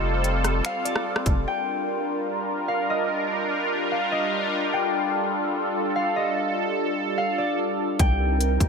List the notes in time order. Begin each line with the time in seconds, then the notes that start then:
Already playing: F1 G3 C4 F4 A4 D#5 F5 G5
0.24 closed hi-hat
0.44 cross-stick, closed hi-hat
0.65 F5, finger snap, closed hi-hat
0.85 D5, closed hi-hat
0.96 cross-stick
1.16 cross-stick
1.26 F1, kick, closed hi-hat
1.46 G3 D4 F4 A#4 G5
2.68 F5
2.90 D#5
3.91 F5
4.12 D#5
4.73 A4 G5
5.96 F5
6.16 D#5
7.18 F5
7.38 D5
7.99 C2 C4 D#4 A#4 C5 G5 A#5, kick, closed hi-hat
8.41 closed hi-hat
8.60 C2, kick, closed hi-hat